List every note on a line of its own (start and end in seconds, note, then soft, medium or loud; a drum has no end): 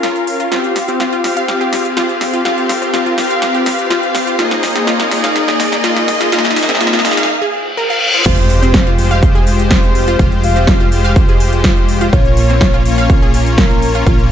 0.00 0.49 C#4 loud
0.00 0.49 F4 medium
0.00 0.12 F4 loud
0.00 0.49 A#4 medium
0.00 0.49 F5 loud
0.00 snare medium
0.00 closed hi-hat soft
0.00 riser medium
0.16 closed hi-hat soft
0.27 open hi-hat medium
0.40 0.48 F4 medium
0.40 closed hi-hat medium
0.52 1.21 C4 medium
0.52 1.21 F4 medium
0.52 0.60 F4 loud
0.52 1.21 G4 medium
0.52 1.21 F5 loud
0.52 snare medium
0.52 closed hi-hat soft
0.64 closed hi-hat soft
0.76 snare medium
0.76 open hi-hat loud
0.88 0.93 C4 medium
0.88 closed hi-hat soft
1.00 1.05 F4 medium
1.00 snare medium
1.00 closed hi-hat soft
1.13 1.17 F4 medium
1.13 closed hi-hat soft
1.24 2.42 C4 loud
1.24 2.42 F4 medium
1.24 2.42 G4 medium
1.24 2.42 F5 loud
1.24 snare medium
1.24 open hi-hat medium
1.37 1.45 F5 loud
1.37 closed hi-hat medium
1.48 snare medium
1.48 closed hi-hat soft
1.61 1.69 G4 medium
1.61 closed hi-hat soft
1.73 snare medium
1.73 open hi-hat loud
1.85 closed hi-hat soft
1.97 2.05 F4 loud
1.97 snare medium
1.97 closed hi-hat medium
2.09 closed hi-hat soft
2.21 snare medium
2.21 open hi-hat medium
2.34 2.41 F4 medium
2.34 closed hi-hat medium
2.45 3.15 C4 loud
2.45 3.15 F4 medium
2.45 2.54 F4 loud
2.45 3.15 G4 medium
2.45 3.15 F5 loud
2.45 snare medium
2.45 closed hi-hat medium
2.58 closed hi-hat soft
2.69 snare medium
2.69 open hi-hat loud
2.82 2.87 C4 medium
2.82 closed hi-hat medium
2.94 2.99 F4 medium
2.94 snare medium
2.94 closed hi-hat medium
3.06 3.11 F4 medium
3.06 closed hi-hat soft
3.18 4.36 C4 loud
3.18 4.36 F4 medium
3.18 4.36 G4 medium
3.18 4.36 F5 loud
3.18 snare medium
3.18 open hi-hat medium
3.30 3.38 F5 loud
3.30 closed hi-hat medium
3.42 snare medium
3.42 closed hi-hat medium
3.55 3.62 G4 medium
3.55 closed hi-hat soft
3.66 snare medium
3.66 open hi-hat loud
3.79 closed hi-hat medium
3.90 3.99 F4 loud
3.90 snare medium
3.90 closed hi-hat medium
4.03 closed hi-hat soft
4.15 snare medium
4.15 open hi-hat medium
4.27 4.35 F4 medium
4.27 closed hi-hat medium
4.39 5.09 A#3 medium
4.39 5.09 D#4 medium
4.39 4.47 F4 loud
4.39 5.09 G#4 medium
4.39 5.09 D#5 loud
4.39 snare medium
4.39 closed hi-hat medium
4.51 snare medium
4.51 closed hi-hat soft
4.63 snare medium
4.63 open hi-hat loud
4.75 4.80 C4 medium
4.75 snare medium
4.75 closed hi-hat medium
4.87 4.92 F4 medium
4.87 snare medium
4.87 closed hi-hat medium
4.99 5.04 F4 medium
4.99 snare medium
4.99 closed hi-hat soft
5.11 6.29 A#3 loud
5.11 6.29 D#4 medium
5.11 6.29 G#4 medium
5.11 6.29 D#5 loud
5.11 snare medium
5.11 open hi-hat medium
5.24 5.32 F5 loud
5.24 snare medium
5.24 closed hi-hat medium
5.36 snare medium
5.36 closed hi-hat medium
5.48 5.56 G#4 medium
5.48 snare medium
5.48 closed hi-hat soft
5.60 snare loud
5.60 open hi-hat loud
5.72 snare medium
5.72 closed hi-hat medium
5.84 5.92 F4 loud
5.84 snare loud
5.84 closed hi-hat medium
5.96 snare medium
5.96 closed hi-hat soft
6.08 snare loud
6.08 open hi-hat medium
6.21 6.29 F4 medium
6.21 snare medium
6.21 closed hi-hat medium
6.32 7.02 A#3 loud
6.32 7.02 D#4 medium
6.32 6.41 F4 loud
6.32 7.02 G#4 medium
6.32 7.02 D#5 loud
6.32 snare loud
6.32 closed hi-hat medium
6.38 snare medium
6.45 snare medium
6.45 closed hi-hat soft
6.51 snare medium
6.56 snare loud
6.56 open hi-hat loud
6.63 snare medium
6.69 6.74 C4 medium
6.69 snare medium
6.69 closed hi-hat medium
6.75 snare medium
6.81 6.86 F4 medium
6.81 snare loud
6.81 closed hi-hat medium
6.87 snare medium
6.93 6.98 F4 medium
6.93 snare medium
6.93 closed hi-hat soft
6.99 snare medium
7.05 7.29 A#3 loud
7.05 7.29 D#4 medium
7.05 7.29 G#4 medium
7.05 7.29 D#5 loud
7.05 snare loud
7.05 open hi-hat medium
7.11 snare medium
7.17 7.25 F5 loud
7.17 snare medium
7.17 closed hi-hat medium
7.23 snare loud
7.29 reverse cymbal medium
7.42 7.50 G#4 medium
7.77 7.83 A#4 medium
7.90 7.95 F5 loud
8.14 8.22 F4 medium
8.26 10.17 F1 medium
8.26 8.96 G#3 medium
8.26 8.34 F4 loud
8.26 8.96 F4 medium
8.26 8.96 G4 medium
8.26 8.96 C5 loud
8.26 8.89 C5 loud
8.26 8.34 F5 medium
8.26 kick loud
8.26 closed hi-hat medium
8.26 crash loud
8.26 impact medium
8.38 closed hi-hat soft
8.50 open hi-hat loud
8.63 8.67 C4 medium
8.63 8.67 C5 medium
8.63 closed hi-hat medium
8.74 8.79 F4 medium
8.74 8.79 F5 medium
8.74 kick loud
8.74 snare loud
8.74 closed hi-hat medium
8.87 8.92 F4 medium
8.87 8.92 F5 medium
8.87 closed hi-hat soft
8.98 10.17 G#3 loud
8.98 10.17 F4 medium
8.98 10.17 G4 medium
8.98 10.17 C5 loud
8.98 open hi-hat medium
9.11 9.19 F5 loud
9.11 9.19 F6 medium
9.11 closed hi-hat medium
9.23 kick loud
9.23 closed hi-hat medium
9.35 9.43 G#4 medium
9.35 9.43 G#5 medium
9.35 closed hi-hat soft
9.47 open hi-hat loud
9.59 closed hi-hat medium
9.71 9.79 F4 loud
9.71 10.34 C5 loud
9.71 9.80 F5 medium
9.71 kick loud
9.71 snare loud
9.71 closed hi-hat medium
9.83 closed hi-hat soft
9.95 open hi-hat medium
10.08 10.16 F4 medium
10.08 10.16 F5 medium
10.08 closed hi-hat medium
10.19 12.11 F1 medium
10.19 10.89 G#3 loud
10.19 10.89 F4 medium
10.19 10.28 F4 loud
10.19 10.89 G4 medium
10.19 10.89 C5 loud
10.19 10.28 F5 medium
10.19 kick loud
10.19 closed hi-hat medium
10.32 closed hi-hat soft
10.44 10.87 F5 loud
10.44 open hi-hat loud
10.56 10.61 C4 medium
10.56 10.61 C5 medium
10.56 closed hi-hat medium
10.67 10.73 F4 medium
10.67 10.73 F5 medium
10.67 kick loud
10.67 snare loud
10.67 closed hi-hat medium
10.80 10.85 F4 medium
10.80 10.85 F5 medium
10.80 closed hi-hat soft
10.92 12.10 G#3 loud
10.92 12.10 F4 medium
10.92 12.10 G4 medium
10.92 12.10 C5 loud
10.92 open hi-hat medium
11.04 11.12 F5 loud
11.04 11.12 F6 medium
11.04 closed hi-hat medium
11.16 kick loud
11.16 closed hi-hat medium
11.29 11.37 G#4 medium
11.29 11.37 G#5 medium
11.29 closed hi-hat soft
11.40 open hi-hat loud
11.53 closed hi-hat medium
11.64 11.73 F4 loud
11.64 11.73 F5 medium
11.64 kick loud
11.64 snare loud
11.64 closed hi-hat medium
11.77 closed hi-hat soft
11.89 open hi-hat medium
12.01 12.09 F4 medium
12.01 12.09 F5 medium
12.01 closed hi-hat medium
12.13 14.04 A#1 medium
12.13 12.83 A#3 medium
12.13 12.83 C#4 medium
12.13 12.83 F4 medium
12.13 12.21 F4 loud
12.13 12.83 C#5 loud
12.13 12.76 C#5 loud
12.13 12.21 F5 medium
12.13 kick loud
12.13 closed hi-hat medium
12.25 closed hi-hat soft
12.37 open hi-hat loud
12.50 12.54 C4 medium
12.50 12.54 C5 medium
12.50 closed hi-hat medium
12.61 12.66 F4 medium
12.61 12.66 F5 medium
12.61 kick loud
12.61 snare loud
12.61 closed hi-hat medium
12.74 12.79 F4 medium
12.74 12.79 F5 medium
12.74 closed hi-hat soft
12.86 14.04 A#3 loud
12.86 14.04 C#4 medium
12.86 14.04 F4 medium
12.86 14.04 C#5 loud
12.86 open hi-hat loud
12.98 13.06 F5 loud
12.98 13.06 F6 medium
12.98 closed hi-hat medium
13.10 kick loud
13.10 closed hi-hat soft
13.22 13.30 G#4 medium
13.22 13.30 G#5 medium
13.22 closed hi-hat soft
13.34 open hi-hat loud
13.46 closed hi-hat medium
13.58 13.67 F4 loud
13.58 14.21 A#4 loud
13.58 13.67 F5 medium
13.58 kick loud
13.58 snare loud
13.58 closed hi-hat medium
13.71 closed hi-hat soft
13.82 open hi-hat medium
13.95 14.03 F4 medium
13.95 14.03 F5 medium
13.95 closed hi-hat medium
14.07 14.32 A#1 medium
14.07 14.32 A#3 loud
14.07 14.32 C#4 medium
14.07 14.32 F4 medium
14.07 14.15 F4 loud
14.07 14.32 C#5 loud
14.07 14.15 F5 medium
14.07 kick loud
14.07 closed hi-hat medium
14.19 closed hi-hat soft